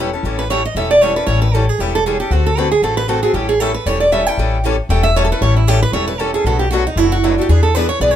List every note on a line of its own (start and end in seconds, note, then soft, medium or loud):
0.00 0.13 E1 medium
0.00 0.09 C#4 medium
0.00 0.09 E4 medium
0.00 0.09 A4 medium
0.00 0.10 B4 medium
0.13 0.24 C#4 soft
0.13 0.24 E4 medium
0.13 0.24 A4 medium
0.23 0.65 A1 medium
0.23 0.43 E3 medium
0.23 0.43 G3 medium
0.23 0.43 C#4 medium
0.23 0.43 E4 medium
0.23 0.43 A4 medium
0.39 0.50 B4 medium
0.50 0.60 E3 medium
0.50 0.60 G3 medium
0.50 0.60 C#4 medium
0.50 0.61 E4 medium
0.50 0.61 A4 medium
0.50 0.64 C#5 medium
0.65 0.76 D#5 medium
0.75 1.17 E1 medium
0.75 0.94 E3 medium
0.75 0.94 G3 medium
0.75 0.95 C#4 medium
0.75 0.95 E4 medium
0.75 0.95 A4 medium
0.75 0.90 E5 medium
0.91 1.01 D5 medium
1.01 1.12 E3 medium
1.01 1.12 G3 medium
1.01 1.12 C#4 medium
1.01 1.12 E4 medium
1.01 1.13 A4 medium
1.01 1.16 C#5 medium
1.16 1.27 C#4 soft
1.16 1.27 E4 soft
1.16 1.27 A4 medium
1.16 1.26 B4 medium
1.27 1.69 A1 medium
1.27 1.46 E3 medium
1.27 1.46 G3 medium
1.27 1.46 C#4 medium
1.27 1.46 E4 medium
1.27 1.46 A4 medium
1.27 1.41 C#5 medium
1.42 1.54 B4 medium
1.54 1.64 E3 medium
1.54 1.64 G3 medium
1.54 1.64 C#4 medium
1.54 1.65 E4 medium
1.54 1.69 A4 medium
1.54 1.65 A4 medium
1.69 1.80 G#4 medium
1.79 2.20 E1 medium
1.79 1.98 E3 medium
1.79 1.98 G3 medium
1.79 1.98 C#4 medium
1.79 1.98 E4 medium
1.79 1.94 G4 medium
1.79 1.99 A4 medium
1.95 2.05 A4 medium
2.06 2.16 E3 medium
2.06 2.16 G3 medium
2.06 2.16 C#4 medium
2.06 2.16 E4 medium
2.06 2.19 G#4 medium
2.06 2.16 A4 medium
2.20 2.32 C#4 soft
2.20 2.32 E4 soft
2.20 2.31 G4 medium
2.20 2.31 A4 soft
2.30 2.72 D2 medium
2.30 2.50 D3 medium
2.30 2.50 A3 medium
2.30 2.50 C4 medium
2.30 2.45 F#4 medium
2.30 2.50 F#4 medium
2.30 2.50 A4 medium
2.46 2.57 A4 medium
2.57 2.68 D3 medium
2.57 2.68 A3 medium
2.57 2.68 C4 medium
2.57 2.68 F#4 medium
2.57 2.68 A4 medium
2.57 2.71 B4 medium
2.71 2.82 G#4 medium
2.82 3.24 A1 medium
2.82 3.01 D3 medium
2.82 3.01 A3 medium
2.82 3.02 C4 medium
2.82 3.02 F#4 medium
2.82 2.97 A4 medium
2.82 3.02 A4 medium
2.97 3.08 B4 medium
3.08 3.19 D3 medium
3.08 3.19 A3 medium
3.08 3.19 C4 medium
3.08 3.19 F#4 medium
3.08 3.19 A4 medium
3.08 3.22 A4 medium
3.23 3.34 C4 soft
3.23 3.35 F#4 soft
3.23 3.34 G#4 medium
3.23 3.34 A4 medium
3.33 3.75 A1 medium
3.33 3.53 E3 medium
3.33 3.53 G3 medium
3.33 3.53 C#4 medium
3.33 3.53 E4 medium
3.33 3.48 G4 medium
3.33 3.53 A4 medium
3.49 3.60 G#4 medium
3.60 3.71 E3 medium
3.60 3.71 G3 medium
3.60 3.71 C#4 medium
3.60 3.71 E4 medium
3.60 3.74 A4 medium
3.60 3.71 A4 medium
3.74 3.86 B4 medium
3.86 4.28 E1 medium
3.86 4.04 E3 medium
3.86 4.05 G3 medium
3.86 4.05 C#4 medium
3.86 4.05 E4 medium
3.86 4.05 A4 medium
3.86 4.00 C#5 medium
4.00 4.12 D5 medium
4.12 4.22 E3 medium
4.12 4.22 G3 medium
4.12 4.23 C#4 medium
4.12 4.23 E4 medium
4.12 4.23 A4 medium
4.12 4.27 E5 medium
4.27 4.38 C#4 soft
4.27 4.38 E4 medium
4.27 4.38 A4 medium
4.27 4.64 G5 medium
4.37 4.79 A1 medium
4.37 4.57 E3 medium
4.37 4.57 G3 medium
4.37 4.57 C#4 medium
4.37 4.57 E4 medium
4.37 4.57 A4 medium
4.65 4.75 E3 medium
4.65 4.75 G3 medium
4.65 4.75 C#4 medium
4.65 4.75 E4 medium
4.65 4.75 A4 medium
4.89 5.31 E1 medium
4.89 5.08 E3 medium
4.89 5.09 G3 medium
4.89 5.09 C#4 medium
4.89 5.09 E4 medium
4.89 5.09 A4 medium
4.89 5.03 G5 medium
5.03 5.15 E5 loud
5.16 5.26 E3 medium
5.16 5.26 G3 medium
5.16 5.27 C#4 medium
5.16 5.27 E4 medium
5.16 5.27 A4 loud
5.16 5.24 C#5 medium
5.25 5.32 A4 medium
5.31 5.41 C#4 soft
5.31 5.42 E4 soft
5.31 5.42 A4 medium
5.31 5.41 B4 medium
5.41 5.83 A1 medium
5.41 5.60 E3 medium
5.41 5.60 G3 medium
5.41 5.60 C#4 medium
5.41 5.61 E4 medium
5.41 5.61 A4 medium
5.41 5.56 C#5 medium
5.57 5.68 E4 soft
5.67 5.78 E3 medium
5.67 5.78 G3 medium
5.67 5.78 C#4 medium
5.67 5.78 E4 medium
5.67 5.82 G4 medium
5.67 5.79 A4 medium
5.83 5.93 B4 medium
5.92 6.34 E1 medium
5.92 6.12 E3 medium
5.92 6.12 G3 medium
5.92 6.12 C#4 medium
5.92 6.12 E4 medium
5.92 6.12 A4 medium
5.92 6.07 C#5 medium
6.08 6.20 B4 medium
6.19 6.30 E3 medium
6.19 6.30 G3 medium
6.19 6.30 C#4 medium
6.19 6.30 E4 medium
6.19 6.30 A4 medium
6.19 6.34 A4 medium
6.34 6.46 C#4 soft
6.34 6.46 E4 soft
6.34 6.45 G#4 medium
6.34 6.45 A4 medium
6.44 6.86 B1 medium
6.44 6.64 B2 medium
6.44 6.65 F#3 medium
6.44 6.64 A3 medium
6.44 6.65 D4 medium
6.44 6.65 F#4 medium
6.44 6.59 A4 medium
6.44 6.64 B4 medium
6.59 6.70 G4 medium
6.71 6.82 B2 medium
6.71 6.82 F#3 medium
6.71 6.83 A3 medium
6.71 6.83 D4 medium
6.71 6.85 F#4 medium
6.71 6.83 F#4 loud
6.71 6.82 B4 medium
6.87 6.97 D#4 medium
6.96 7.38 F#1 medium
6.96 7.16 B2 medium
6.96 7.16 F#3 medium
6.96 7.16 A3 medium
6.96 7.16 D4 medium
6.96 7.12 E4 medium
6.96 7.16 F#4 medium
6.96 7.16 B4 medium
7.12 7.23 F#4 medium
7.24 7.34 B2 medium
7.24 7.34 F#3 medium
7.24 7.34 A3 medium
7.24 7.34 D4 medium
7.24 7.32 E4 medium
7.24 7.34 F#4 medium
7.24 7.34 B4 medium
7.32 7.40 D4 medium
7.38 7.49 A3 soft
7.38 7.49 D4 medium
7.38 7.49 F#4 medium
7.38 7.49 G4 medium
7.49 7.90 E2 medium
7.49 7.68 E3 medium
7.49 7.68 B3 medium
7.49 7.68 D4 medium
7.49 7.62 G#4 medium
7.49 7.68 G#4 medium
7.49 7.68 B4 medium
7.63 7.75 A4 medium
7.75 7.86 E3 medium
7.75 7.86 B3 medium
7.75 7.86 D4 medium
7.75 7.86 G#4 medium
7.75 7.88 B4 medium
7.75 7.86 B4 medium
7.89 8.00 C#5 medium
8.00 8.16 B1 medium
8.00 8.16 E3 medium
8.00 8.16 B3 medium
8.00 8.16 D4 medium
8.00 8.16 G#4 medium
8.00 8.16 B4 medium
8.00 8.11 D5 medium
8.11 8.16 C#5 medium